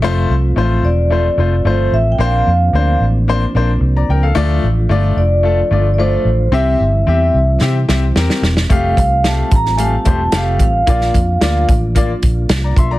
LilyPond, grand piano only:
\new Staff \with { instrumentName = "Grand piano" } { \time 4/4 \key f \major \tempo 4 = 111 << { r1 | r2. r16 <d'' bes''>16 <bes' g''>16 <a' f''>16~ | <a' f''>16 r2. r8. | r1 |
r1 | r2. r16 <d'' bes''>16 <e'' c'''>16 <d'' bes''>16 | } \\ { <a f' c''>8 r8 <a f' c''>8 r8 <a f' c''>16 r16 <a f' c''>16 r16 <a f' c''>8 r8 | <bes d' c''>8 r8 <bes d' c''>8 r8 <bes d' c''>16 r16 <bes d' c''>16 r4 r16 | <a f' d''>8 r8 <a f' d''>8 r8 <a f' a'>16 r16 <a f' d''>16 r16 <a f' d''>8 r8 | <c' g' e''>8 r8 <c' g' e''>8 r8 <c' g' e''>16 r16 <c' g' e''>16 r16 <c' g' bes'>8 r8 |
<a g' f''>8 r8 <a g' f''>8 r8 <a g' f''>16 r16 <a g' c''>16 r16 <a g' f''>8 r8 | <bes f' d''>8 r8 <bes f' d''>8 r8 <bes f' d''>16 r4. r16 | } >> }